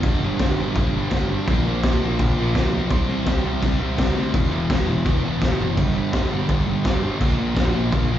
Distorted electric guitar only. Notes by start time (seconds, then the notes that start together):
0.05 G2 D3 G3
0.22 G2 D3 G3
0.41 G2 D3 G3
0.59 G2 D3 G3
0.77 G2 D3 G3
0.95 G2 D3 G3
1.12 G2 D3 G3
1.29 G2 D3 G3
1.48 A#2 F3 A#3
1.66 A#2 F3 A#3
1.85 A#2 F3 A#3
2.01 A#2 F3 A#3
2.19 A#2 F3 A#3
2.37 A#2 F3 A#3
2.54 A#2 F3 A#3
2.72 A#2 F3 A#3
2.88 C3 G3 C4
3.08 C3 G3 C4
3.26 C3 G3 C4
3.43 C3 G3 C4
3.61 C3 G3 C4
3.79 C3 G3 C4
3.97 C3 G3 C4
4.15 C3 G3 C4
4.34 E2 B2 E3
4.51 E2 B2 E3
4.70 E2 B2 E3
4.86 E2 B2 E3
5.06 E2 B2 E3
5.24 E2 B2 E3
5.41 E2 B2 E3
5.60 E2 B2 E3
5.77 G2 D3 G3
5.95 G2 D3 G3
6.12 G2 D3 G3
6.30 G2 D3 G3
6.48 G2 D3 G3
6.66 G2 D3 G3
6.83 G2 D3 G3
7.02 G2 D3 G3
7.19 A#2 F3 A#3
7.39 A#2 F3 A#3
7.55 A#2 F3 A#3
7.74 A#2 F3 A#3
7.92 A#2 F3 A#3
8.10 A#2 F3 A#3